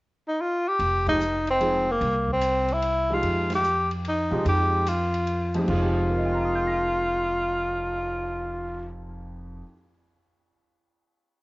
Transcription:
0.28 0.42 D#4 medium
0.41 0.70 F4 medium
0.68 1.08 G4 loud
0.79 1.97 F1 medium
0.79 kick soft
0.79 ride medium
1.06 1.19 F3 medium
1.06 1.19 G#3 soft
1.06 1.20 D#4 soft
1.06 1.46 D#4 medium
1.06 1.20 G4 medium
1.06 kick medium
1.06 ride medium
1.20 hi-hat pedal medium
1.47 1.93 C4 medium
1.47 ride soft
1.60 1.85 F3 medium
1.60 1.85 G#3 medium
1.60 1.86 D#4 soft
1.60 1.86 G#4 medium
1.60 ride medium
1.91 2.30 A#3 medium
2.01 3.19 C2 medium
2.01 kick soft
2.01 ride medium
2.28 kick medium
2.32 2.74 C4 medium
2.41 hi-hat pedal medium
2.41 ride medium
2.68 ride soft
2.73 3.15 E4 loud
2.82 ride medium
3.10 3.62 F3 medium
3.10 3.62 G#3 soft
3.10 3.62 D#4 soft
3.10 3.53 F4 medium
3.10 3.62 G4 medium
3.23 4.28 F2 medium
3.23 kick soft
3.23 ride medium
3.50 snare medium
3.50 ride medium
3.55 3.91 G4 medium
3.64 hi-hat pedal medium
3.91 ride soft
4.05 4.45 D#4 medium
4.05 ride medium
4.31 4.45 C3 medium
4.31 4.84 F3 medium
4.31 4.84 G#3 medium
4.31 4.84 D#4 medium
4.31 4.85 G4 medium
4.45 5.64 F2 medium
4.45 4.90 G4 medium
4.45 kick soft
4.45 ride medium
4.86 5.56 F4 medium
4.86 hi-hat pedal medium
4.86 ride medium
5.14 ride soft
5.27 ride medium
5.54 9.59 F2 medium
5.54 5.62 F3 medium
5.54 5.68 G#3 medium
5.54 5.69 D#4 medium
5.54 5.69 G4 medium
5.54 ride soft
5.64 9.62 F3 medium
5.64 crash medium
5.68 9.60 F1 medium
5.68 9.65 G#3 medium
5.68 8.91 F4 medium
5.68 kick medium
5.76 9.68 D#4 medium
5.83 9.71 G4 medium
5.95 cymbal swell soft
6.10 9.61 A#4 soft
6.18 9.64 D#5 soft
6.25 9.68 G5 soft
6.35 9.73 A#5 soft
6.45 9.78 D#6 soft
6.55 9.83 G6 soft
6.67 9.89 A#6 soft

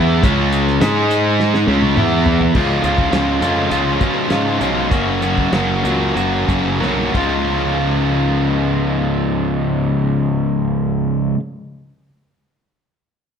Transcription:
0.00 0.21 E2 medium
0.00 0.22 E3 loud
0.00 0.23 B3 loud
0.00 0.23 E4 loud
0.23 0.77 C#2 loud
0.23 0.80 C#3 loud
0.23 0.80 G#3 loud
0.23 0.81 C#4 loud
0.23 kick loud
0.23 closed hi-hat medium
0.53 closed hi-hat medium
0.67 snare soft
0.81 1.64 G#2 loud
0.81 1.66 G#3 loud
0.81 1.67 D#4 medium
0.81 1.67 G#4 loud
0.81 snare loud
0.81 closed hi-hat medium
1.11 closed hi-hat medium
1.40 snare medium
1.54 snare medium
1.67 1.95 C#2 loud
1.67 1.96 C#3 medium
1.67 1.96 G#3 loud
1.67 1.96 C#4 medium
1.82 high tom medium
1.96 2.50 E2 medium
1.96 2.54 E3 medium
1.96 2.54 B3 medium
1.96 2.54 E4 loud
1.96 mid tom medium
2.26 floor tom medium
2.41 floor tom medium
2.55 2.80 C#2 medium
2.55 2.81 C#3 medium
2.55 2.82 F3 medium
2.55 2.82 G#3 loud
2.55 2.83 C#4 loud
2.55 2.83 F4 loud
2.55 kick loud
2.55 crash medium
2.83 3.09 C#2 medium
2.83 3.11 C#3 medium
2.83 3.11 F3 medium
2.83 3.12 G#3 medium
2.83 3.13 C#4 medium
2.83 3.13 F4 medium
2.83 closed hi-hat medium
2.98 kick medium
3.12 3.38 C#2 medium
3.12 3.40 C#3 medium
3.12 3.41 F3 medium
3.12 3.41 G#3 loud
3.12 3.42 C#4 loud
3.12 3.42 F4 loud
3.12 snare loud
3.12 closed hi-hat medium
3.41 3.67 F2 medium
3.41 3.69 C#3 medium
3.41 3.70 F3 medium
3.41 3.70 G#3 medium
3.41 3.71 C#4 medium
3.41 3.71 F4 medium
3.41 closed hi-hat medium
3.70 3.97 C#2 medium
3.70 3.99 C#3 medium
3.70 4.00 F3 medium
3.70 4.00 G#3 loud
3.70 4.01 C#4 medium
3.70 4.01 F4 medium
3.70 closed hi-hat medium
4.01 4.27 B2 medium
4.01 4.29 C#3 medium
4.01 4.29 F3 medium
4.01 4.30 G#3 medium
4.01 4.31 C#4 medium
4.01 4.30 F4 medium
4.01 kick medium
4.01 closed hi-hat medium
4.30 4.57 G#2 medium
4.30 4.59 C#3 medium
4.30 4.60 F3 medium
4.30 4.60 G#3 medium
4.30 4.61 C#4 medium
4.30 4.60 F4 medium
4.30 snare loud
4.30 closed hi-hat medium
4.60 4.87 B1 medium
4.60 4.89 C#3 medium
4.60 4.89 F3 medium
4.60 4.89 G#3 medium
4.60 4.90 C#4 medium
4.60 4.90 F4 medium
4.60 closed hi-hat medium
4.89 5.45 F#1 medium
4.89 5.20 F#2 medium
4.89 5.21 C#3 medium
4.89 5.21 F#3 medium
4.89 5.21 A#3 medium
4.89 5.22 C#4 loud
4.89 5.22 F#4 medium
4.89 kick loud
4.89 closed hi-hat medium
5.21 5.51 F#2 medium
5.21 5.51 C#3 medium
5.21 5.52 F#3 medium
5.21 5.52 A#3 medium
5.21 5.52 C#4 medium
5.21 5.52 F#4 medium
5.21 closed hi-hat medium
5.38 kick medium
5.52 5.80 F#1 medium
5.52 5.82 F#2 medium
5.52 5.83 C#3 medium
5.52 5.83 F#3 medium
5.52 5.83 A#3 loud
5.52 5.84 C#4 medium
5.52 5.84 F#4 loud
5.52 snare loud
5.52 closed hi-hat medium
5.83 6.12 C#2 medium
5.83 6.14 F#2 medium
5.83 6.14 C#3 medium
5.83 6.15 F#3 medium
5.83 6.15 A#3 medium
5.83 6.15 C#4 medium
5.83 6.16 F#4 medium
5.83 closed hi-hat medium
6.15 6.44 F#1 medium
6.15 6.46 F#2 medium
6.15 6.47 C#3 medium
6.15 6.47 F#3 medium
6.15 6.47 A#3 medium
6.15 6.47 C#4 medium
6.15 6.48 F#4 loud
6.15 closed hi-hat medium
6.47 6.77 F#1 medium
6.47 6.78 F#2 medium
6.47 6.79 C#3 medium
6.47 6.79 F#3 medium
6.47 6.79 A#3 medium
6.47 6.80 C#4 medium
6.47 6.80 F#4 medium
6.47 kick medium
6.47 closed hi-hat medium
6.79 7.10 B1 medium
6.79 7.13 F#2 medium
6.79 7.12 C#3 medium
6.79 7.14 F#3 medium
6.79 7.14 A#3 medium
6.79 7.14 C#4 medium
6.79 7.14 F#4 medium
6.79 snare medium
6.98 high tom medium
7.13 11.33 C#2 medium
7.13 11.36 C#3 medium
7.13 11.37 F3 medium
7.13 11.38 G#3 medium
7.13 11.39 C#4 medium
7.13 11.40 F4 loud
7.13 kick medium
7.13 ride medium

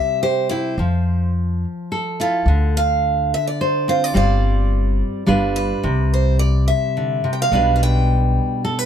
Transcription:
0.00 0.75 C3 medium
0.00 0.78 G3 medium
0.00 0.22 E5 medium
0.23 0.50 G4 soft
0.23 0.48 C5 medium
0.49 0.75 E4 soft
0.49 0.76 G4 medium
0.49 1.30 C5 medium
0.78 1.64 F2 medium
0.78 2.48 F3 medium
1.92 3.60 A4 medium
2.20 2.44 E4 soft
2.20 3.88 F4 medium
2.20 2.78 A4 medium
2.46 3.32 D2 medium
2.46 4.16 D3 medium
2.77 3.34 F5 medium
3.34 3.47 E5 medium
3.47 3.89 D5 medium
3.61 4.13 C5 medium
3.88 4.14 C4 soft
3.88 4.13 F4 soft
3.88 4.04 C5 medium
4.04 4.16 D5 medium
4.14 5.01 G1 medium
4.14 5.26 G3 medium
4.14 5.27 C4 soft
4.14 5.25 F4 soft
4.14 5.25 C5 medium
4.14 5.25 D5 medium
5.26 5.71 G1 medium
5.26 7.52 G3 medium
5.26 5.86 D4 soft
5.26 5.81 F4 soft
5.26 5.81 B4 medium
5.56 6.13 B4 medium
5.83 6.70 C2 medium
5.83 7.23 C3 medium
6.14 6.39 C5 medium
6.39 6.66 D5 medium
6.68 7.32 E5 medium
6.97 7.25 D3 soft
7.24 7.52 C3 medium
7.33 7.39 G5 medium
7.42 7.74 F5 medium
7.52 8.38 B1 medium
7.52 8.86 B2 medium
7.52 8.86 G3 soft
7.52 8.86 D4 soft
7.52 8.86 F4 soft
7.52 8.64 B4 soft
7.76 7.82 F5 medium
7.83 8.62 G5 medium
8.65 8.79 A4 medium
8.79 8.86 B4 soft

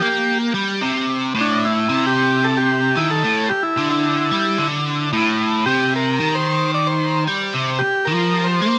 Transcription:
0.00 0.54 A#3 loud
0.00 0.38 G4 medium
0.55 0.81 G3 loud
0.81 1.34 C3 loud
1.35 1.89 A2 loud
1.41 1.66 D4 medium
1.65 2.06 E4 medium
1.89 2.96 C3 loud
2.07 2.47 G4 loud
2.44 2.58 A4 loud
2.57 2.99 G4 loud
2.97 3.24 D#3 loud
2.97 3.11 E4 medium
3.11 3.48 A4 loud
3.24 3.50 A2 loud
3.50 3.63 G4 loud
3.50 muted overdriven electric guitar stroke medium
3.63 3.89 E4 medium
3.77 4.31 D3 loud
3.90 4.68 E4 medium
4.31 4.58 G3 loud
4.58 5.11 D3 loud
5.13 5.66 A2 loud
5.66 6.19 C3 loud
5.66 5.94 G4 medium
5.96 6.36 A#4 medium
6.20 7.26 D#3 loud
6.35 6.72 C5 loud
6.74 6.88 D5 loud
6.87 7.24 C5 medium
7.27 7.53 G3 loud
7.54 7.80 C3 loud
7.79 8.07 G4 medium
7.79 muted overdriven electric guitar stroke medium
8.05 8.60 F3 loud
8.05 8.48 A#4 medium
8.44 8.79 C5 medium
8.61 8.79 A#3 loud

